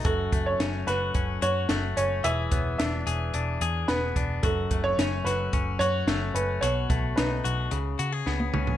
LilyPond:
<<
  \new Staff \with { instrumentName = "Upright piano" } { \time 4/4 \key fis \minor \tempo 4 = 110 a'8. cis''8. b'4 cis''4 cis''8 | e''4 e''4. r8 b'4 | a'8. cis''8. b'4 cis''4 b'8 | cis''4 b'4. r4. | }
  \new Staff \with { instrumentName = "Clean electric guitar" } { \time 4/4 \key fis \minor <fis, fis'>8 a8 cis'8 fis'8 cis'8 fis'8 a8 cis'8 | <e gis'>8 b8 d'8 gis'8 d'8 gis'8 b8 d'8 | <fis, fis'>8 a8 cis'8 fis'8 cis'8 fis'8 a8 cis'8 | <b, fis'>8 a8 dis'8 fis'8 cis8 fis'16 gis'16 b8 cis'8 | }
  \new Staff \with { instrumentName = "Picked electric bass" } { \clef bass \time 4/4 \key fis \minor fis,,8 fis,,8 fis,,8 fis,,8 fis,,8 fis,8 fis,,8 fis,,8 | e,,8 e,,8 e,,8 e,,8 e,,8 e,8 e,,8 e,,8 | fis,,8 fis,,8 fis,,8 fis,,8 fis,,8 fis,8 fis,,8 fis,,8 | b,,8 b,,8 b,,8 b,,8 cis,8 cis8 cis,8 cis,8 | }
  \new DrumStaff \with { instrumentName = "Drums" } \drummode { \time 4/4 <hh bd>8 <hh bd>8 <hh sn>8 <hh sn>8 <hh bd>8 hh8 <hh sn>8 hh8 | hh8 <hh bd>8 <hh sn>8 hh8 hh8 hh8 <hh sn>8 <hh bd>8 | <hh bd>8 <hh bd>8 <hh sn>8 <hh sn>8 <hh bd>8 hh8 <hh sn>8 hh8 | hh8 <hh bd>8 <hh sn>8 hh8 hh8 hh8 sn16 tommh16 toml16 tomfh16 | }
>>